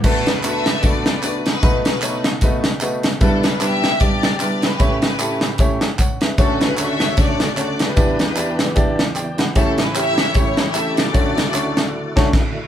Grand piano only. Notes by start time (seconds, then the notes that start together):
0.04 D2 D3 A3 B3 D4 F#4 B4
0.43 A3 B3 D4 F#4 A4
0.82 A3 B3 D4 F#4 A4
1.23 A3 B3 D4 F#4 B4
1.62 B1 B2 A3 B3 D#4 F#4 B4
2.02 A3 B3 D#4 F#4 C#5
2.43 A3 B3 D#4 F#4 B4
2.81 A3 B3 D#4 F#4 B4
3.21 B1 B2 G3 B3 D4 E4 B4
3.61 G3 B3 D4 E4 B4
4.01 G3 B3 D4 E4 G4
4.40 G3 B3 D4 E4 B4
4.79 A1 A2 A3 C#4 E4 G4 C#5
5.20 A3 C#4 E4 G4 A4
5.59 A3 C#4 E4 G4 C#5
5.99 C#5 F#5
6.22 B4 E5
6.38 D2 D3 A3 C#4 D4 F#4 C#5
6.77 A3 C#4 D4 F#4 C#5
7.17 A3 C#4 D4 F#4 C#5
7.57 A3 C#4 D4 F#4 C#5
7.96 E2 E3 B3 D4 E4 G4 D5
8.37 B3 D4 E4 G4 D5
8.75 B3 D4 E4 G4 D5
9.15 D5 G5
9.38 F#5 B5
9.56 A1 A2 A3 C#4 E4 G4 C#5
9.94 A3 C#4 E4 G4 C#5
10.35 A3 C#4 E4 G4 C#5
10.74 A3 C#4 E4 G4 A4
11.13 D2 D3 A3 C#4 D4 F#4 C#5
11.53 A3 C#4 D4 F#4 C#5
12.16 A3 C#4 D4 F#4 C#5